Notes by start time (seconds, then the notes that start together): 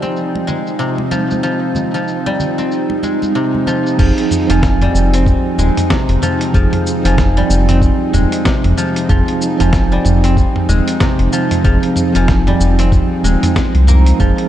Already playing: C3 F3 G3 G#3 C4 D#4 G#5
0.02 C4, muted conga, shaker
0.16 shaker
0.35 muted conga
0.47 G#3, low conga, shaker
0.67 shaker
0.79 C3, shaker
0.98 muted conga
1.11 F3, high conga, shaker
1.31 high conga, shaker
1.43 F3, shaker
1.75 high conga, low conga, shaker
1.94 F3, shaker
2.08 shaker
2.26 G3, muted conga
2.40 low conga, shaker
2.58 C4, muted conga, shaker
2.71 shaker
2.90 muted conga
3.03 G#3, high conga, shaker
3.22 muted conga, high conga, shaker
3.35 C3, shaker
3.55 high conga
3.67 F3, muted conga, high conga, shaker
3.86 shaker
3.97 F1 F3 C4 D#4 G#4, kick, crash, shaker
4.18 closed hi-hat
4.31 mid tom, shaker
4.47 F1 F3 C4 D#4, closed hi-hat, shaker
4.52 G#5
4.63 kick, snare, shaker
4.82 G3, closed hi-hat, mid tom
4.94 F1, shaker
5.14 C4, closed hi-hat, shaker
5.26 kick, mid tom, shaker
5.58 D#1 G#3, shaker
5.77 closed hi-hat, mid tom, shaker
5.90 C3, kick, snare, shaker
6.09 F1, closed hi-hat
6.22 F3, mid tom, shaker
6.41 closed hi-hat, shaker
6.53 F1 F3 C4 D#4 G#4, kick, shaker
6.73 closed hi-hat, mid tom
6.87 shaker
7.03 F1 F3 C4 D#4 G#5, closed hi-hat, shaker
7.18 kick, snare, mid tom, shaker
7.37 G3, closed hi-hat
7.50 F1, shaker
7.69 C4, closed hi-hat, mid tom, shaker
7.82 kick, shaker
8.13 D#1 G#3, mid tom, shaker
8.32 closed hi-hat, shaker
8.45 C3, kick, snare, shaker
8.64 F1, closed hi-hat, mid tom
8.77 F3, shaker
8.96 closed hi-hat, shaker
9.08 F1 F3 C4 D#4 G#4, kick, mid tom, shaker
9.28 closed hi-hat
9.42 shaker
9.58 F1 F3 C4 D#4 G#5, closed hi-hat, mid tom, shaker
9.73 kick, snare, shaker
9.92 G3, closed hi-hat
10.05 F1, mid tom, shaker
10.24 C4, closed hi-hat, shaker
10.37 kick, shaker
10.56 mid tom
10.68 D#1 G#3, shaker
10.88 closed hi-hat, shaker
11.00 C3, kick, snare, mid tom, shaker
11.19 F1, closed hi-hat
11.33 F3, shaker
11.51 closed hi-hat, mid tom, shaker
11.63 F1 F3 C4 D#4 G#4, kick, shaker
11.83 closed hi-hat
11.96 mid tom, shaker
12.13 F1 F3 C4 D#4 G#5, closed hi-hat, shaker
12.28 kick, snare, shaker
12.47 G3, closed hi-hat, mid tom
12.60 F1, shaker
12.79 C4, closed hi-hat, shaker
12.92 kick, mid tom, shaker
13.24 D#1 G#3, shaker
13.43 closed hi-hat, mid tom, shaker
13.56 G#3, kick, snare, shaker
13.75 C2, closed hi-hat
13.87 A#3, mid tom, shaker
14.06 closed hi-hat, shaker
14.19 F1 F3 C4 D#4 G#4, kick, shaker
14.38 closed hi-hat